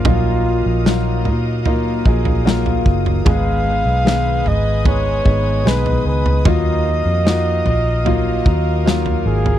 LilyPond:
<<
  \new Staff \with { instrumentName = "String section" } { \time 4/4 \key dis \minor \tempo 4 = 75 << { dis'''1~ | dis'''1~ | dis'''1 | } \\ { <ais' dis'' eis''>1 | <b' dis'' gis''>1 | <ais' dis'' eis''>1 | } >> }
  \new Staff \with { instrumentName = "Flugelhorn" } { \time 4/4 \key dis \minor eis'4. r2 r8 | eis''4. dis''8 cis''4 b'8 b'8 | dis''2. r8 gis'8 | }
  \new Staff \with { instrumentName = "Steel-string acoustic guitar" } { \time 4/4 \key dis \minor <ais, fis ais dis' eis' ais'>8 <ais dis' eis' ais'>8 <ais, fis ais dis' eis' ais'>8 <ais dis' eis' ais'>8 <ais dis' eis' ais'>8 <ais dis' eis' ais'>8 <ais, fis ais dis' eis' ais'>4 | <gis, dis gis b dis' b'>8 <gis b dis' b'>8 <gis, dis gis b dis' b'>8 <gis b dis' b'>8 <gis b dis' b'>8 <gis b dis' b'>8 <gis, dis gis b dis' b'>4 | <dis fis dis' eis' ais'>8 <eis' ais'>8 <dis dis' eis' ais'>8 <dis' eis' ais'>8 <fis dis' eis' ais'>8 <dis' eis' ais'>8 <dis fis dis' eis' ais'>4 | }
  \new Staff \with { instrumentName = "Grand piano" } { \time 4/4 \key dis \minor <fis ais dis' eis'>4 <fis ais dis' eis'>4 <fis ais dis' eis'>8 <fis ais dis' gis'>8 <fis ais dis' eis'>4 | <gis b dis' gis'>4 <gis b dis' gis'>4 <gis b dis' gis'>8 <gis b dis' gis'>8 <gis b dis' gis'>4 | <fis ais dis' eis'>4 <ais dis' fis'>4 <fis ais dis' eis'>8 <fis ais dis' eis'>8 <fis ais dis' eis'>4 | }
  \new Staff \with { instrumentName = "Grand piano" } { \clef bass \time 4/4 \key dis \minor ais,4. r2 r8 | gis,4. r2 r8 | dis4. r2 r8 | }
  \new Staff \with { instrumentName = "Fingered electric bass" } { \clef bass \time 4/4 \key dis \minor ais,,8. ais,,8. ais,4 ais,,4 fis,,8 | gis,,8. b,,8. gis,,4 gis,,8 b,,8 cis,8 | dis,8. eis,8. ais,,4 dis,4 gis,,8 | }
  \new DrumStaff \with { instrumentName = "Drums" } \drummode { \time 4/4 <bd tomfh>4 sn8 tomfh8 tomfh8 bd16 tomfh16 sn16 tomfh16 bd16 tomfh16 | <bd tomfh>4 sn8 tomfh8 <bd tomfh>8 bd8 sn16 tomfh8 tomfh16 | <bd tomfh>4 sn8 tomfh8 tomfh8 bd8 sn16 tomfh8 tomfh16 | }
>>